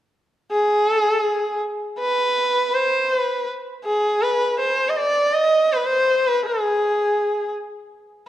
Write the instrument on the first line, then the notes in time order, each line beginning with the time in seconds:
sarangi
0.51 G#4
1.99 B4
2.74 C5
3.16 B4
3.85 G#4
4.22 B4
4.59 C5
4.89 D#5
4.96 D5
5.33 D#5
5.72 C5
5.76 B4
5.85 C5
6.27 B4
6.46 G#4